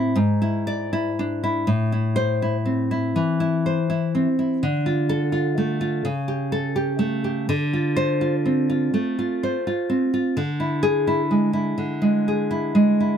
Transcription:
Already playing: A2 C4 E4
0.15 G#2
0.42 E4
0.67 D5
0.93 E4
1.19 D4
1.44 E4
1.67 A2
1.92 E4
2.16 C5
2.42 E4
2.65 C4
2.91 E4
3.16 E3
3.40 E4
3.66 C5
3.90 E4
4.15 C4
4.39 E4
4.63 D3
4.86 F4
5.09 A4
5.32 F4
5.58 A3
5.81 F4
6.05 C#3
6.28 G4
6.52 A4
6.76 G4
6.99 A3
7.24 G4
7.49 D3
7.73 F4
7.96 C5
8.21 F4
8.46 C4
8.70 F4
8.94 A3
9.19 F4
9.43 C5
9.67 F4
9.90 C4
10.14 F4
10.37 D3
10.60 E4
10.83 G#4
11.07 E4
11.31 G#3
11.53 E4
11.78 D3
12.02 G#3
12.28 G#4
12.51 E4
12.75 G#3
13.00 E4

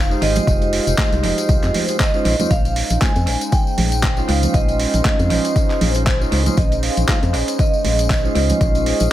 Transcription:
Already playing: F1 G#3 D#4 F4 C5 F5
0.10 G#3 D#4 F4 G4 C5, tambourine
0.22 G#1 D#5, open hi-hat
0.36 closed hi-hat, tambourine, high conga, low conga
0.47 F1, kick, closed hi-hat, tambourine
0.62 closed hi-hat, tambourine
0.73 open hi-hat
0.87 F1, closed hi-hat, tambourine
0.97 G#3 D#4 F4 G4 C5, kick, clap, closed hi-hat, high conga
1.12 C2, closed hi-hat, tambourine
1.24 F1, open hi-hat, low conga
1.38 closed hi-hat, tambourine
1.49 C2, kick, closed hi-hat, tambourine
1.63 F2, clap, tambourine
1.74 C5, open hi-hat, high conga, low conga
1.88 G#3 D#4 F4 G4 C5, closed hi-hat, tambourine
2.00 D#5, kick, clap, closed hi-hat, tambourine
2.14 G#3 C#4 D#4 F4 C5, tambourine
2.25 A#1 G#3 C#4 D#4, open hi-hat
2.39 G#3 C#4 D#4 F4 C5, closed hi-hat, tambourine, high conga, low conga
2.51 A#1 F5, kick, closed hi-hat, tambourine
2.65 closed hi-hat, tambourine
2.71 G#4
2.76 open hi-hat
2.90 A#1, closed hi-hat, tambourine
3.01 G#3 C#4 D#4 F4 C5 G#5, kick, clap, closed hi-hat, tambourine, high conga
3.16 F2, closed hi-hat, tambourine
3.21 D#5
3.27 A#1, open hi-hat
3.39 C5, closed hi-hat, tambourine
3.46 G#5
3.52 G5, kick, closed hi-hat, tambourine
3.67 tambourine
3.78 A#1, open hi-hat, high conga, low conga
3.92 closed hi-hat, tambourine
4.03 kick, clap, closed hi-hat, tambourine
4.17 G#3 C#4 D#4 F4 C5, tambourine
4.29 C#2 F5, open hi-hat
4.43 closed hi-hat, tambourine, high conga, low conga
4.54 A#1 D#5, kick, closed hi-hat, tambourine
4.68 closed hi-hat, tambourine
4.79 open hi-hat
4.94 A#1, closed hi-hat, tambourine
5.04 G#3 C#4 D#4 F4 C5 D#5, kick, clap, closed hi-hat, tambourine, high conga
5.19 F2, closed hi-hat, tambourine
5.30 A#1, open hi-hat, low conga
5.45 closed hi-hat, tambourine
5.56 kick, closed hi-hat, tambourine
5.70 clap, tambourine
5.81 A#1 C5, open hi-hat, high conga, low conga
5.95 G#3 C#4 D#4 F4 C5, closed hi-hat, tambourine
6.06 kick, clap, closed hi-hat, tambourine
6.20 G#3 C#4 D#4 F4 C5, tambourine
6.32 C#2, open hi-hat
6.46 G#3 C#4 D#4 F4 C5, closed hi-hat, tambourine, high conga, low conga
6.57 A#1 D#5, kick, closed hi-hat, tambourine
6.72 closed hi-hat, tambourine
6.83 F5, open hi-hat
6.97 A#1, closed hi-hat, tambourine
7.08 G#3 C#4 D#4 F4 C5, kick, clap, closed hi-hat, tambourine, high conga
7.23 F2, closed hi-hat, tambourine
7.34 A#1, open hi-hat
7.48 closed hi-hat, tambourine
7.59 D#5, kick, closed hi-hat, tambourine
7.74 tambourine
7.84 A#1, open hi-hat, high conga, low conga
7.99 closed hi-hat, tambourine
8.10 kick, clap, closed hi-hat, tambourine
8.23 G#3 C#4 D#4 F4 C5, tambourine
8.35 C#2, open hi-hat
8.49 closed hi-hat, tambourine, high conga, low conga
8.61 A#1, kick, closed hi-hat, tambourine
8.75 closed hi-hat, tambourine
8.86 open hi-hat
9.00 A#1, closed hi-hat, tambourine

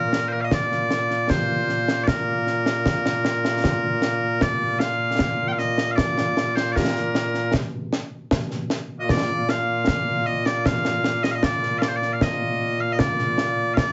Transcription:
Already playing: A#2 A#3 F4 A#4
0.13 snare
0.28 C5
0.32 A#4
0.41 D#5 F5
0.51 D5, concert bass drum, snare
0.72 snare
0.91 snare
1.11 snare
1.29 C5, concert bass drum, snare
1.69 snare
1.88 snare
2.03 A#4 D5
2.08 concert bass drum, snare
2.47 snare
2.66 snare
2.86 concert bass drum, snare
3.06 snare
3.25 snare
3.45 snare
3.64 concert bass drum, snare
4.02 snare
4.41 D5, concert bass drum, snare
4.79 F5, snare
5.19 concert bass drum, snare
5.48 G5
5.52 F5
5.59 D#5, snare
5.78 snare
5.91 F5
5.95 D5, concert bass drum, snare
6.18 snare
6.37 snare
6.55 C5, snare
6.72 A#4 D5
6.76 concert bass drum, snare
6.96 snare
7.15 snare
7.34 snare
7.54 concert bass drum, snare
7.93 snare
8.31 concert bass drum, snare
8.51 snare
8.70 snare
9.00 A#2 A#3 F4 D#5
9.09 D5, concert bass drum, snare
9.49 F5, snare
9.87 concert bass drum, snare
10.26 D#5
10.46 D5, snare
10.66 F5, concert bass drum, snare
10.85 snare
11.04 snare
11.23 D#5, snare
11.31 D#5 F5
11.43 D5, concert bass drum, snare
11.63 snare
11.78 D5 F5, snare
11.88 C5
11.96 D5
12.02 snare
12.13 F5
12.21 D#5, concert bass drum, snare
12.80 F5
12.92 D#5
12.99 D5, concert bass drum, snare
13.19 snare
13.38 snare
13.74 D5 F5, concert bass drum, snare

